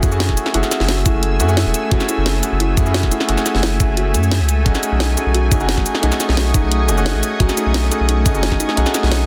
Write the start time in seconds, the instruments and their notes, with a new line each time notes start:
Already playing: grand piano A3 C#4 E4 F#4 G#4, ambient pad A3 G#5 E6
0.02 sub bass F#2, grand piano A3 C#4 E4 F#4 G#4, kalimba E4, kick, closed hi-hat, shaker
0.11 grand piano A3 C#4 E4 F#4 G#4, shaker
0.20 snare, closed hi-hat
0.29 sub bass E1, kick, snare
0.37 closed hi-hat, shaker
0.46 snare
0.53 sub bass F#1, grand piano A3 C#4 E4 F#4 G#4, kalimba E4, closed hi-hat
0.63 snare, shaker
0.71 snare, closed hi-hat, shaker
0.80 sub bass F#1, snare
0.88 kalimba F#4, snare, closed hi-hat
1.05 grand piano A3 C#4 E4 F#4 G#4, kalimba E4, kick, closed hi-hat, shaker
1.14 sub bass F#1
1.23 closed hi-hat
1.39 sub bass F#2, grand piano A3 C#4 E4 F#4 G#4, closed hi-hat, shaker
1.48 grand piano A3 C#4 E4 F#4 G#4, shaker
1.57 kalimba E4, snare, closed hi-hat
1.66 sub bass E1
1.74 closed hi-hat, shaker
1.90 sub bass F#1, grand piano A3 C#4 E4 F#4 G#4, kalimba F#4, kick, closed hi-hat
2.00 snare, shaker
2.09 kalimba E4, closed hi-hat, shaker
2.17 sub bass F#1
2.26 snare, closed hi-hat
2.42 grand piano A3 C#4 E4 F#4 G#4, closed hi-hat, shaker
2.52 sub bass F#1
2.60 kalimba E4, closed hi-hat
2.76 sub bass F#2, grand piano A3 C#4 E4 F#4 G#4, kick, closed hi-hat, shaker
2.85 grand piano A3 C#4 E4 F#4 G#4, shaker
2.94 kalimba F#4, snare, closed hi-hat
3.03 sub bass E1, kick, snare
3.12 kalimba E4, closed hi-hat, shaker
3.20 snare
3.27 sub bass F#1, grand piano A3 C#4 E4 F#4 G#4, closed hi-hat
3.38 snare, shaker
3.46 snare, closed hi-hat, shaker
3.55 sub bass F#1, snare
3.63 kalimba E4, snare, closed hi-hat
3.79 grand piano A3 C#4 E4 F#4 G#4, kick, closed hi-hat, shaker
3.89 sub bass F#1
3.97 kalimba F#4, closed hi-hat
4.14 sub bass F#2, kalimba A4, closed hi-hat, shaker
4.23 shaker
4.31 snare, closed hi-hat
4.40 sub bass C#2
4.49 closed hi-hat, shaker
4.64 sub bass B1, grand piano A3 C#4 D#4 F#4 G#4, ambient pad C#6 D#6, kick, closed hi-hat
4.75 snare, shaker
4.83 closed hi-hat, shaker
4.92 sub bass B1
5.00 kalimba D#4, snare, closed hi-hat
5.17 grand piano A3 C#4 D#4 F#4 G#4, closed hi-hat, shaker
5.26 sub bass B1
5.34 kalimba F#4, closed hi-hat
5.51 sub bass F#1, grand piano A3 C#4 D#4 F#4 G#4, kalimba D#4, kick, closed hi-hat, shaker
5.60 grand piano A3 C#4 D#4 F#4 G#4, shaker
5.69 snare, closed hi-hat
5.77 sub bass A1, kick, snare
5.86 closed hi-hat, shaker
5.95 snare
6.01 sub bass B1, grand piano A3 C#4 D#4 F#4 G#4, kalimba D#4, closed hi-hat
6.12 snare, shaker
6.20 snare, closed hi-hat, shaker
6.29 sub bass B1, snare
6.37 kalimba F#4, snare, closed hi-hat
6.54 grand piano A3 C#4 D#4 F#4 G#4, kalimba D#4, kick, closed hi-hat, shaker
6.63 sub bass B1
6.72 closed hi-hat
6.88 sub bass F#1, grand piano A3 C#4 D#4 F#4 G#4, closed hi-hat, shaker
6.97 grand piano A3 C#4 D#4 F#4 G#4, shaker
7.06 kalimba D#4, snare, closed hi-hat
7.15 sub bass A1
7.23 closed hi-hat, shaker
7.38 sub bass B1, grand piano A3 C#4 D#4 F#4 G#4, kalimba F#4, kick, closed hi-hat
7.49 snare, shaker
7.57 kalimba D#4, closed hi-hat, shaker
7.66 sub bass B1
7.74 snare, closed hi-hat
7.91 grand piano A3 C#4 D#4 F#4 G#4, closed hi-hat, shaker
8.00 sub bass B1
8.09 kalimba D#4, closed hi-hat
8.25 sub bass F#1, grand piano A3 C#4 D#4 F#4 G#4, kick, closed hi-hat, shaker
8.34 grand piano A3 C#4 D#4 F#4 G#4, shaker
8.43 kalimba F#4, snare, closed hi-hat
8.52 sub bass A1, kick, snare
8.60 kalimba D#4, closed hi-hat, shaker
8.69 snare
8.75 sub bass B1, grand piano A3 C#4 D#4 F#4 G#4, closed hi-hat
8.86 snare, shaker
8.94 snare, closed hi-hat, shaker
9.03 sub bass B1, snare
9.11 kalimba D#4, snare, closed hi-hat